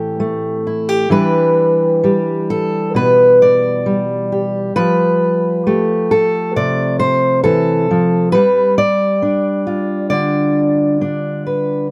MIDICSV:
0, 0, Header, 1, 2, 480
1, 0, Start_track
1, 0, Tempo, 913242
1, 590, Time_signature, 4, 2, 24, 8
1, 2504, Tempo, 894188
1, 6341, End_track
2, 0, Start_track
2, 0, Title_t, "Steel-string acoustic guitar"
2, 0, Program_c, 0, 25
2, 0, Note_on_c, 0, 45, 76
2, 0, Note_on_c, 0, 52, 59
2, 0, Note_on_c, 0, 57, 63
2, 0, Note_on_c, 0, 60, 52
2, 0, Note_on_c, 0, 67, 79
2, 0, Note_on_c, 0, 69, 77
2, 98, Note_off_c, 0, 57, 0
2, 104, Note_on_c, 0, 57, 62
2, 107, Note_off_c, 0, 69, 0
2, 348, Note_off_c, 0, 67, 0
2, 351, Note_on_c, 0, 64, 46
2, 466, Note_off_c, 0, 64, 0
2, 466, Note_on_c, 0, 67, 39
2, 560, Note_off_c, 0, 52, 0
2, 561, Note_off_c, 0, 57, 0
2, 578, Note_on_c, 0, 52, 73
2, 582, Note_off_c, 0, 67, 0
2, 583, Note_on_c, 0, 55, 51
2, 584, Note_off_c, 0, 60, 0
2, 586, Note_on_c, 0, 62, 50
2, 588, Note_on_c, 0, 71, 87
2, 589, Note_on_c, 0, 67, 47
2, 594, Note_off_c, 0, 45, 0
2, 1068, Note_off_c, 0, 55, 0
2, 1070, Note_on_c, 0, 55, 59
2, 1073, Note_off_c, 0, 67, 0
2, 1075, Note_on_c, 0, 67, 45
2, 1312, Note_off_c, 0, 71, 0
2, 1315, Note_on_c, 0, 69, 83
2, 1548, Note_on_c, 0, 47, 60
2, 1553, Note_off_c, 0, 69, 0
2, 1556, Note_on_c, 0, 71, 96
2, 1792, Note_off_c, 0, 71, 0
2, 1798, Note_on_c, 0, 74, 96
2, 2027, Note_off_c, 0, 55, 0
2, 2029, Note_on_c, 0, 55, 64
2, 2270, Note_off_c, 0, 67, 0
2, 2272, Note_on_c, 0, 67, 46
2, 2468, Note_off_c, 0, 52, 0
2, 2472, Note_off_c, 0, 47, 0
2, 2472, Note_off_c, 0, 62, 0
2, 2499, Note_off_c, 0, 74, 0
2, 2501, Note_on_c, 0, 71, 101
2, 2504, Note_on_c, 0, 53, 79
2, 2520, Note_off_c, 0, 67, 0
2, 2986, Note_off_c, 0, 55, 0
2, 2988, Note_on_c, 0, 57, 62
2, 2991, Note_on_c, 0, 67, 48
2, 3224, Note_off_c, 0, 71, 0
2, 3227, Note_on_c, 0, 69, 95
2, 3466, Note_off_c, 0, 69, 0
2, 3469, Note_on_c, 0, 48, 68
2, 3470, Note_on_c, 0, 74, 101
2, 3699, Note_off_c, 0, 74, 0
2, 3702, Note_on_c, 0, 72, 100
2, 3936, Note_off_c, 0, 72, 0
2, 3938, Note_on_c, 0, 69, 95
2, 3942, Note_off_c, 0, 53, 0
2, 3944, Note_on_c, 0, 52, 66
2, 4184, Note_off_c, 0, 52, 0
2, 4191, Note_on_c, 0, 53, 70
2, 4397, Note_off_c, 0, 48, 0
2, 4397, Note_off_c, 0, 57, 0
2, 4411, Note_off_c, 0, 69, 0
2, 4414, Note_on_c, 0, 71, 106
2, 4427, Note_off_c, 0, 53, 0
2, 4427, Note_on_c, 0, 55, 81
2, 4656, Note_off_c, 0, 71, 0
2, 4659, Note_on_c, 0, 74, 110
2, 4868, Note_off_c, 0, 67, 0
2, 4898, Note_on_c, 0, 62, 63
2, 5136, Note_on_c, 0, 65, 52
2, 5361, Note_off_c, 0, 74, 0
2, 5368, Note_on_c, 0, 74, 90
2, 5375, Note_on_c, 0, 50, 65
2, 5853, Note_off_c, 0, 62, 0
2, 5859, Note_on_c, 0, 62, 66
2, 6094, Note_off_c, 0, 74, 0
2, 6101, Note_on_c, 0, 71, 47
2, 6312, Note_off_c, 0, 65, 0
2, 6314, Note_off_c, 0, 62, 0
2, 6314, Note_off_c, 0, 71, 0
2, 6341, Note_off_c, 0, 50, 0
2, 6341, Note_off_c, 0, 55, 0
2, 6341, End_track
0, 0, End_of_file